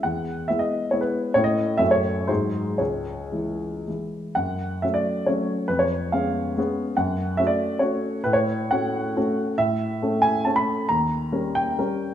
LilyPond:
<<
  \new Staff \with { instrumentName = "Grand piano" } { \time 3/4 \key cis \minor \tempo 4 = 137 fis''4 e''16 dis''8. cis''16 b'8. | cis''16 dis''8. e''16 cis''8. bis'4 | cis''2 r4 | \key fis \minor fis''4 e''16 d''8. cis''4 |
b'16 cis''8. eis''2 | fis''4 e''16 d''8. cis''4 | b'16 cis''8. fis''2 | \key a \lydian e''4. gis''8 a''16 b''8. |
ais''4. g''4. | }
  \new Staff \with { instrumentName = "Grand piano" } { \time 3/4 \key cis \minor e,4 <gis b e'>4 <gis b e'>4 | <a, a cis' e'>4 <fis, a cis' fis'>4 <gis, fis gis dis'>4 | cis,4 <e gis e'>4 <e gis e'>4 | \key fis \minor fis,4 <fis a cis'>4 <fis a cis'>4 |
eis,4 <gis b cis'>4 <gis b cis'>4 | fis,4 <a cis' fis'>4 <a cis' fis'>4 | a,4 <a cis' fis'>4 <a cis' fis'>4 | \key a \lydian a,4 <a cis' a'>4 <a cis' a'>4 |
dis,4 <g cis' ais'>4 <g cis' ais'>4 | }
>>